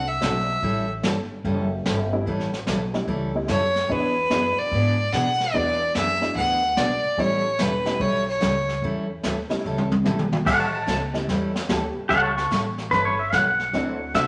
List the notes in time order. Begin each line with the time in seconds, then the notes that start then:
Already playing: C2
0.07 E5
0.21 B1 D3 F#3 A3 C4 D4 F#4 A4, snare, hi-hat pedal
0.62 A1 E3 G3 C#4 E4 A4, brush sweep, kick
1.03 G1 E3 G3 C#4 E4 A4, snare, hi-hat pedal
1.44 F#1 E3 G3 C#4 E4 A4, brush sweep, kick
1.85 G1 E3 G3 C#4 E4 A4, snare, hi-hat pedal
2.13 G3 A3 B3 C#4 E4
2.26 A1 E3 G3 C#4 E4 A4, brush sweep, kick
2.40 snare
2.53 snare
2.66 B1 E3 G3 C#4 E4 A4, snare, hi-hat pedal
2.93 G3 A3 B3 C#4 E4, snare
3.07 C#2 E3 G3 C#4 E4 A4, brush sweep, kick
3.35 G3 A3 B3 C#4 E4
3.48 F#2 E3 G3 C#4 E4 A4 C#5, snare, hi-hat pedal
3.75 snare
3.88 E2 E3 F#3 G#3 B3 D4 E4 B4, brush sweep, kick
3.93 G#4
4.30 F#2 E3 F#3 G#3 B3 D4 E4 G#4, snare, hi-hat pedal
4.58 D5, muted upright bass stroke
4.72 G#2 E3 B3 D4 G#4, brush sweep, kick
5.13 B2 E3 B3 D4 G#4 F#5, snare, hi-hat pedal
5.40 snare
5.54 E2 E3 F#3 G#3 B3 D4 E4 G#4 D5, brush sweep, kick
5.95 F#2 E3 B3 D4 G#4 E5, snare, hi-hat pedal
6.21 F#3 G#3 B3 D4 E4, snare
6.36 D2 E3 B3 D4 G#4 F#5, brush sweep, kick
6.77 B1 E3 B3 D4 G#4 D5, snare, hi-hat pedal
7.04 muted upright bass stroke
7.17 A1 E3 G3 A3 B3 C#4 E4 A4 C#5, brush sweep, kick
7.59 E1 E3 G3 C#4 E4 A4 B4, snare, hi-hat pedal
7.85 G3 A3 B3 C#4 E4, snare
8.00 B1 E3 G3 C#4 E4 A4 C#5, brush sweep, kick
8.28 C#5
8.40 C#2 E3 G3 C#4 E4 A4, snare, hi-hat pedal
8.69 snare
8.82 E2 E3 G3 C#4 E4 A4, brush sweep, kick
9.23 D2 E3 G3 C#4 E4 A4, snare, hi-hat pedal
9.49 G3 A3 B3 C#4 E4, muted upright bass stroke, snare
9.65 C#2 E3 G3 C#4 E4 A4
9.78 high tom
9.92 high tom
10.03 B1 E3 G3 A3 B3 C#4 E4 G4 A4, hi-hat pedal, mid tom
10.19 mid tom
10.32 mid tom
10.46 A1 E3 G3 C#4 E4 A4 F#5, brush sweep, kick, snare, crash
10.59 C#5 A5
10.73 A5
10.86 C#2 E3 G3 C#4 E4 A4, kick, snare, hi-hat pedal
11.13 G3 A3 B3 C#4 E4, snare
11.28 E2 E3 G3 C#4 E4 A4, brush sweep, kick, snare
11.55 snare
11.69 D2 E3 G3 A3 B3 C#4 E4 G4 A4, kick, snare, hi-hat pedal
11.97 muted upright bass stroke
12.09 C#2 E3 G3 C#4 E4 A4 F#5, brush sweep, kick, snare
12.23 C#5 A5
12.36 C#6, snare
12.51 A1 E3 G3 C#4 E4 A4, kick, snare, hi-hat pedal
12.78 snare
12.91 G1 E3 G3 C#4 E4 A4 B4, brush sweep, kick, snare
13.05 C#5
13.19 E5
13.32 B1 E3 G3 C#4 E4 A4 F#5, kick, snare, hi-hat pedal
13.59 snare
13.73 D2 D3 F#3 A3 C4 D4 E4 F#4 A4, brush sweep, kick, snare
14.14 C2 D3 F#3 A3 C4 D4 F#4 A4 E5, kick, snare, hi-hat pedal